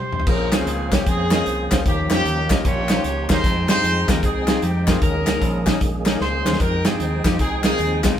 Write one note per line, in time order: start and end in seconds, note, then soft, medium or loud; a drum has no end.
0.00 0.25 G4 medium
0.00 0.25 C5 medium
0.00 high tom medium
0.12 mid tom medium
0.20 floor tom medium
0.27 0.52 A#1 loud
0.27 0.88 A#2 medium
0.27 1.83 C#3 medium
0.27 1.82 F3 medium
0.27 1.82 A#3 medium
0.27 0.52 C#4 medium
0.27 1.03 F4 medium
0.27 1.82 G#4 medium
0.27 0.53 A#4 loud
0.27 1.82 C5 medium
0.27 kick loud
0.27 crash medium
0.52 0.65 C2 loud
0.52 1.05 C4 medium
0.52 0.62 C#4 medium
0.52 1.05 C#4 medium
0.52 0.62 F4 medium
0.52 0.62 G#4 medium
0.52 0.92 G#4 medium
0.52 0.62 A#4 medium
0.52 0.62 C5 medium
0.52 snare loud
0.52 clap loud
0.52 closed hi-hat medium
0.66 1.00 C#2 loud
0.66 closed hi-hat medium
0.91 1.01 C#4 medium
0.91 1.01 F4 medium
0.91 1.06 G4 medium
0.91 1.02 G#4 medium
0.91 1.02 A#4 medium
0.91 1.02 C#5 medium
0.91 kick medium
0.91 snare loud
0.91 clap medium
0.91 closed hi-hat medium
1.06 1.40 F2 medium
1.06 1.31 C4 medium
1.06 1.31 C#4 medium
1.06 1.31 G#4 medium
1.06 kick loud
1.06 closed hi-hat medium
1.31 1.82 C4 medium
1.31 1.41 C#4 medium
1.31 1.82 C#4 medium
1.31 1.41 F4 medium
1.31 1.41 G#4 medium
1.31 1.69 G#4 loud
1.31 1.41 A#4 medium
1.31 1.42 D#5 medium
1.31 snare loud
1.31 clap loud
1.31 closed hi-hat medium
1.46 1.68 C2 loud
1.46 closed hi-hat medium
1.71 1.84 C#2 medium
1.71 1.81 C#4 medium
1.71 1.81 F4 medium
1.71 1.81 G#4 medium
1.71 1.81 A#4 medium
1.71 1.81 C5 medium
1.71 kick medium
1.71 snare loud
1.71 clap loud
1.71 closed hi-hat medium
1.86 2.07 D#2 medium
1.86 2.46 D#3 medium
1.86 3.41 F3 medium
1.86 3.41 A#3 medium
1.86 2.11 A#3 medium
1.86 3.41 C#4 medium
1.86 2.10 C#4 medium
1.86 3.41 D#4 medium
1.86 1.92 F4 medium
1.86 2.09 G4 medium
1.86 kick loud
1.86 closed hi-hat medium
1.91 3.43 G4 medium
2.10 2.23 F2 medium
2.10 2.87 A#3 medium
2.10 2.20 C#4 medium
2.10 2.86 C#4 medium
2.10 2.20 D#4 medium
2.10 2.21 F4 medium
2.10 2.21 G4 medium
2.10 2.48 G4 loud
2.10 2.21 C5 medium
2.10 snare loud
2.10 clap loud
2.10 closed hi-hat medium
2.25 2.47 D#2 loud
2.25 closed hi-hat medium
2.50 2.62 C2 medium
2.50 2.60 C#4 medium
2.50 2.60 D#4 medium
2.50 2.60 F4 medium
2.50 2.60 G4 medium
2.50 2.65 A#4 loud
2.50 2.60 D#5 medium
2.50 kick medium
2.50 snare loud
2.50 clap loud
2.50 closed hi-hat medium
2.65 2.98 A#1 loud
2.65 3.40 F4 medium
2.65 3.40 G4 medium
2.65 3.02 C#5 loud
2.65 kick loud
2.65 closed hi-hat medium
2.89 2.99 C#4 medium
2.89 2.99 D#4 medium
2.89 2.99 F4 medium
2.89 2.99 G4 medium
2.89 3.00 C5 medium
2.89 snare loud
2.89 clap loud
2.89 closed hi-hat medium
3.03 3.25 C#2 medium
3.03 3.27 C#5 loud
3.03 closed hi-hat medium
3.29 3.42 D#2 loud
3.29 3.39 C#4 medium
3.29 3.39 D#4 medium
3.29 3.68 D#4 medium
3.29 3.39 F4 medium
3.29 3.39 G4 medium
3.29 3.68 G#4 medium
3.29 3.39 A#4 medium
3.29 3.67 C5 loud
3.29 kick medium
3.29 snare loud
3.29 clap loud
3.29 closed hi-hat medium
3.44 3.65 F2 loud
3.44 4.99 F3 medium
3.44 4.99 G#3 medium
3.44 4.99 C4 medium
3.44 4.99 D#4 medium
3.44 5.00 G5 medium
3.44 kick loud
3.44 closed hi-hat medium
3.68 3.81 G2 loud
3.68 3.78 C4 medium
3.68 3.79 D#4 medium
3.68 4.23 D#4 medium
3.68 3.79 F4 medium
3.68 3.79 G4 medium
3.68 4.23 G#4 medium
3.68 3.79 G#4 medium
3.68 4.06 C5 loud
3.68 snare loud
3.68 clap loud
3.68 closed hi-hat medium
3.83 4.05 F2 loud
3.83 closed hi-hat medium
4.08 4.21 D#2 medium
4.08 4.18 C4 medium
4.08 4.18 D#4 medium
4.08 4.18 F4 medium
4.08 4.18 G4 medium
4.08 4.23 A#4 loud
4.08 4.18 A#4 medium
4.08 kick medium
4.08 snare loud
4.08 clap loud
4.08 closed hi-hat medium
4.23 4.57 C2 medium
4.23 4.99 C4 medium
4.23 4.99 D#4 medium
4.23 4.63 G#4 loud
4.23 kick loud
4.23 closed hi-hat medium
4.47 4.57 C4 medium
4.47 4.57 D#4 medium
4.47 4.58 F4 medium
4.47 4.58 G4 medium
4.47 4.58 G#4 medium
4.47 snare loud
4.47 clap loud
4.47 closed hi-hat medium
4.62 4.96 F2 loud
4.62 4.88 G4 medium
4.62 closed hi-hat medium
4.87 4.97 C4 medium
4.87 4.97 D#4 medium
4.87 4.97 F4 medium
4.87 4.98 G4 medium
4.87 5.01 G#4 medium
4.87 4.98 A#4 medium
4.87 kick medium
4.87 snare loud
4.87 clap loud
4.87 closed hi-hat medium
5.02 5.23 D#2 loud
5.02 5.63 D#3 medium
5.02 6.57 D#3 medium
5.02 6.57 G#3 medium
5.02 6.57 A#3 medium
5.02 5.77 C#4 medium
5.02 6.58 C#4 medium
5.02 6.57 G#4 medium
5.02 5.67 A#4 loud
5.02 kick loud
5.02 closed hi-hat medium
5.27 5.39 C#2 medium
5.27 5.37 A#3 medium
5.27 5.37 C#4 medium
5.27 5.37 D#4 medium
5.27 5.37 G#4 medium
5.27 5.37 A#4 medium
5.27 snare loud
5.27 clap medium
5.27 closed hi-hat medium
5.42 5.75 A#1 loud
5.42 kick medium
5.42 closed hi-hat medium
5.66 5.76 A#3 medium
5.66 5.76 C#4 medium
5.66 5.76 D#4 medium
5.66 5.76 G#4 medium
5.66 5.76 A#4 medium
5.66 kick medium
5.66 snare loud
5.66 clap loud
5.66 closed hi-hat medium
5.81 6.15 A#1 medium
5.81 kick loud
5.81 closed hi-hat medium
6.06 6.16 A#3 medium
6.06 6.16 C#4 medium
6.06 6.16 D#4 medium
6.06 6.16 G#4 medium
6.06 6.16 A#4 medium
6.06 snare loud
6.06 clap medium
6.06 closed hi-hat medium
6.20 6.42 C#2 loud
6.20 6.58 G#4 medium
6.20 6.57 C5 loud
6.20 snare medium
6.45 6.58 D#2 medium
6.45 6.55 A#3 medium
6.45 6.55 C#4 medium
6.45 6.55 D#4 medium
6.45 6.55 G#4 medium
6.45 6.55 C5 medium
6.45 snare medium
6.45 clap loud
6.53 snare medium
6.60 6.82 F2 loud
6.60 8.16 F3 medium
6.60 8.16 G#3 medium
6.60 8.16 C4 medium
6.60 6.85 D#4 medium
6.60 8.16 D#4 medium
6.60 7.24 G4 medium
6.60 6.85 A#4 loud
6.60 8.16 G5 medium
6.60 kick loud
6.60 closed hi-hat medium
6.85 6.97 G2 loud
6.85 6.95 G#3 medium
6.85 6.95 C4 medium
6.85 7.39 C4 medium
6.85 6.95 D#4 medium
6.85 7.39 D#4 medium
6.85 6.95 F4 medium
6.85 6.95 G4 medium
6.85 7.25 G#4 loud
6.85 snare loud
6.85 clap medium
6.85 closed hi-hat medium
7.00 7.21 D#2 loud
7.00 closed hi-hat medium
7.24 7.37 F2 medium
7.24 7.34 G#3 medium
7.24 7.34 C4 medium
7.24 7.34 D#4 medium
7.24 7.35 F4 medium
7.24 7.39 G4 medium
7.24 7.35 G4 medium
7.24 kick medium
7.24 snare loud
7.24 clap loud
7.24 closed hi-hat medium
7.39 7.73 C2 medium
7.39 7.63 C4 medium
7.39 7.63 D#4 medium
7.39 7.62 G#4 loud
7.39 kick medium
7.39 closed hi-hat medium
7.64 7.74 G#3 medium
7.64 8.14 C4 medium
7.64 7.74 C4 medium
7.64 8.14 D#4 medium
7.64 7.74 D#4 medium
7.64 7.74 F4 medium
7.64 8.01 G#4 loud
7.64 7.74 A#4 medium
7.64 snare loud
7.64 clap loud
7.64 closed hi-hat medium
7.78 8.06 D#2 loud
7.78 closed hi-hat medium
8.03 8.16 C#2 loud
8.03 8.13 G#3 medium
8.03 8.13 C4 medium
8.03 8.13 D#4 medium
8.03 8.14 F4 medium
8.03 8.14 G#4 medium
8.03 kick medium
8.03 snare loud
8.03 clap loud
8.03 closed hi-hat medium